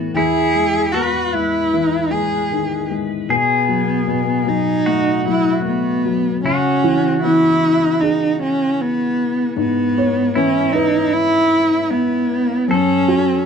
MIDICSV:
0, 0, Header, 1, 5, 480
1, 0, Start_track
1, 0, Tempo, 785340
1, 100, Time_signature, 4, 2, 24, 8
1, 4901, Tempo, 778210
1, 8255, End_track
2, 0, Start_track
2, 0, Title_t, "Felt piano"
2, 0, Program_c, 0, 0
2, 4180, Note_on_c, 0, 52, 69
2, 4904, Note_on_c, 0, 68, 46
2, 6026, Note_off_c, 0, 52, 0
2, 6110, Note_on_c, 0, 73, 65
2, 6587, Note_on_c, 0, 71, 63
2, 6747, Note_off_c, 0, 68, 0
2, 7944, Note_off_c, 0, 73, 0
2, 7999, Note_off_c, 0, 71, 0
2, 8024, Note_on_c, 0, 66, 77
2, 8255, Note_off_c, 0, 66, 0
2, 8255, End_track
3, 0, Start_track
3, 0, Title_t, "Pedal steel guitar"
3, 0, Program_c, 1, 26
3, 0, Note_on_c, 1, 66, 74
3, 102, Note_on_c, 1, 64, 81
3, 157, Note_off_c, 1, 66, 0
3, 576, Note_on_c, 1, 71, 91
3, 593, Note_off_c, 1, 64, 0
3, 2019, Note_on_c, 1, 68, 86
3, 2056, Note_off_c, 1, 71, 0
3, 2953, Note_off_c, 1, 68, 0
3, 2972, Note_on_c, 1, 66, 83
3, 3675, Note_off_c, 1, 66, 0
3, 3946, Note_on_c, 1, 66, 82
3, 6342, Note_on_c, 1, 64, 76
3, 6422, Note_off_c, 1, 66, 0
3, 7794, Note_on_c, 1, 69, 96
3, 7826, Note_off_c, 1, 64, 0
3, 8255, Note_off_c, 1, 69, 0
3, 8255, End_track
4, 0, Start_track
4, 0, Title_t, "Cello"
4, 0, Program_c, 2, 42
4, 96, Note_on_c, 2, 68, 107
4, 564, Note_on_c, 2, 66, 88
4, 573, Note_off_c, 2, 68, 0
4, 819, Note_on_c, 2, 64, 93
4, 828, Note_off_c, 2, 66, 0
4, 1291, Note_on_c, 2, 68, 87
4, 1300, Note_off_c, 2, 64, 0
4, 1772, Note_off_c, 2, 68, 0
4, 2029, Note_on_c, 2, 59, 81
4, 2741, Note_on_c, 2, 63, 94
4, 2750, Note_off_c, 2, 59, 0
4, 3220, Note_off_c, 2, 63, 0
4, 3229, Note_on_c, 2, 64, 92
4, 3449, Note_off_c, 2, 64, 0
4, 3456, Note_on_c, 2, 59, 91
4, 3916, Note_off_c, 2, 59, 0
4, 3940, Note_on_c, 2, 61, 96
4, 4398, Note_off_c, 2, 61, 0
4, 4419, Note_on_c, 2, 64, 104
4, 4893, Note_on_c, 2, 63, 88
4, 4902, Note_off_c, 2, 64, 0
4, 5139, Note_off_c, 2, 63, 0
4, 5154, Note_on_c, 2, 61, 86
4, 5392, Note_on_c, 2, 59, 94
4, 5401, Note_off_c, 2, 61, 0
4, 5869, Note_off_c, 2, 59, 0
4, 5872, Note_on_c, 2, 59, 100
4, 6349, Note_on_c, 2, 61, 91
4, 6359, Note_off_c, 2, 59, 0
4, 6571, Note_on_c, 2, 63, 92
4, 6580, Note_off_c, 2, 61, 0
4, 6821, Note_on_c, 2, 64, 105
4, 6830, Note_off_c, 2, 63, 0
4, 7302, Note_on_c, 2, 59, 88
4, 7311, Note_off_c, 2, 64, 0
4, 7783, Note_off_c, 2, 59, 0
4, 7798, Note_on_c, 2, 61, 108
4, 8255, Note_off_c, 2, 61, 0
4, 8255, End_track
5, 0, Start_track
5, 0, Title_t, "Felt piano"
5, 0, Program_c, 3, 0
5, 0, Control_c, 3, 64, 127
5, 0, Note_on_c, 3, 52, 49
5, 0, Note_on_c, 3, 57, 49
5, 82, Note_off_c, 3, 57, 0
5, 93, Note_off_c, 3, 52, 0
5, 97, Note_on_c, 3, 40, 56
5, 108, Control_c, 3, 64, 0
5, 215, Control_c, 3, 64, 127
5, 336, Note_on_c, 3, 56, 47
5, 580, Note_on_c, 3, 59, 54
5, 813, Note_off_c, 3, 56, 0
5, 822, Note_on_c, 3, 56, 46
5, 1061, Note_on_c, 3, 52, 51
5, 1289, Note_off_c, 3, 56, 0
5, 1298, Note_on_c, 3, 56, 53
5, 1512, Note_off_c, 3, 59, 0
5, 1541, Note_on_c, 3, 51, 54
5, 1766, Note_off_c, 3, 56, 0
5, 1776, Note_on_c, 3, 56, 50
5, 1988, Note_off_c, 3, 40, 0
5, 1992, Note_off_c, 3, 52, 0
5, 2003, Note_off_c, 3, 51, 0
5, 2008, Note_off_c, 3, 56, 0
5, 2013, Note_on_c, 3, 47, 60
5, 2023, Control_c, 3, 64, 0
5, 2137, Control_c, 3, 64, 127
5, 2253, Note_on_c, 3, 54, 49
5, 2481, Note_off_c, 3, 47, 0
5, 2491, Note_on_c, 3, 47, 59
5, 2722, Note_off_c, 3, 54, 0
5, 2731, Note_on_c, 3, 54, 54
5, 2973, Note_on_c, 3, 57, 53
5, 3208, Note_off_c, 3, 54, 0
5, 3217, Note_on_c, 3, 54, 53
5, 3433, Note_off_c, 3, 47, 0
5, 3446, Note_off_c, 3, 57, 0
5, 3456, Note_on_c, 3, 57, 49
5, 3692, Note_off_c, 3, 54, 0
5, 3701, Note_on_c, 3, 54, 55
5, 3926, Note_off_c, 3, 57, 0
5, 3935, Note_off_c, 3, 54, 0
5, 3938, Note_on_c, 3, 49, 56
5, 3951, Control_c, 3, 64, 0
5, 4073, Control_c, 3, 64, 127
5, 4418, Note_on_c, 3, 59, 47
5, 4421, Note_on_c, 3, 61, 41
5, 4424, Note_on_c, 3, 52, 55
5, 5841, Note_off_c, 3, 49, 0
5, 5855, Note_on_c, 3, 44, 61
5, 6321, Note_off_c, 3, 59, 0
5, 6322, Note_off_c, 3, 61, 0
5, 6324, Note_off_c, 3, 52, 0
5, 6339, Note_on_c, 3, 59, 50
5, 6342, Note_on_c, 3, 61, 43
5, 6346, Note_on_c, 3, 52, 55
5, 7755, Note_off_c, 3, 44, 0
5, 7756, Note_off_c, 3, 59, 0
5, 7758, Note_off_c, 3, 61, 0
5, 7760, Note_off_c, 3, 52, 0
5, 7778, Note_on_c, 3, 42, 64
5, 7794, Control_c, 3, 64, 0
5, 7883, Control_c, 3, 64, 127
5, 8255, Note_off_c, 3, 42, 0
5, 8255, End_track
0, 0, End_of_file